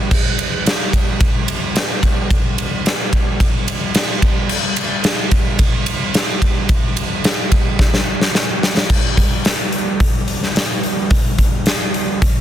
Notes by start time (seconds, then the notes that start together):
0.11 kick, crash
0.39 ride
0.66 snare, ride
0.93 kick, ride
1.20 kick, ride
1.48 ride
1.76 snare, ride
2.03 kick, ride
2.31 kick, ride
2.58 ride
2.86 snare, ride
3.13 kick, ride
3.40 kick, ride
3.68 ride
3.95 snare, ride
4.22 kick, ride
4.49 crash
4.76 ride
5.04 snare, ride
5.31 kick, ride
5.59 kick, ride
5.86 ride
6.14 snare, ride
6.42 kick, ride
6.69 kick, ride
6.97 ride
7.24 snare, ride
7.52 kick, ride
7.79 kick, snare
7.94 snare
8.21 snare
8.35 snare
8.63 snare
8.77 snare
8.90 kick, crash
9.17 kick, open hi-hat
9.45 snare, open hi-hat
9.72 open hi-hat
10.00 kick, open hi-hat
10.28 open hi-hat
10.43 snare
10.56 snare, open hi-hat
10.83 open hi-hat
11.11 kick, open hi-hat
11.38 kick, open hi-hat
11.66 snare, open hi-hat
11.94 open hi-hat
12.22 kick, open hi-hat